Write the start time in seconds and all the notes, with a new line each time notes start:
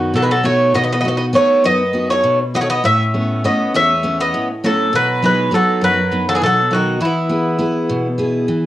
Already playing: F#2 D#3 B3 D#4 F#4
0.14 B2 F#3 A4
0.22 G#3 B4
0.31 F#3 A4
0.43 A3 B3 D#4 F#4 C#5
0.74 B2 B3 D#5
0.83 B3 D#5
0.92 B3 D#5
1.01 B3 D#4 D#5
1.05 B3 F#4 D#5
1.17 B3 D#5
1.33 A3 B3 D#4 F#4 C#5
1.64 F#2 B3 D#5
1.93 B3 D#4 F#4
2.10 A3 C#5
2.24 B2
2.54 B3 D#4 F#4 D#5
2.61 A3 C#5
2.70 B3 D#5
2.84 A2 C#4 E5
3.14 A3 B3 C#4
3.44 A3 B3 C#4 D#5
3.74 E2 C#4 E5
4.03 A3 B3 C#4
4.20 B3 D#5
4.34 A2
4.64 F#3 A3 B3 C#4 A4
4.93 B2 F#3 B4
5.22 F#3 G#3 B3 D#4 B4
5.51 F#3 B3 D#4 A4
5.81 F#2 F#3 B4
6.11 F#3 B3 D#4
6.29 F#3 A4
6.35 E3 G#4
6.41 B2 A4
6.46 F#3
6.71 D#3 F#3 B3 D#4 F#4
7.00 E3 E4
7.05 B3
7.29 B3 E4 G#4
7.58 B3 E4 G#4
7.89 B2
8.18 B3 E4 G#4
8.48 E3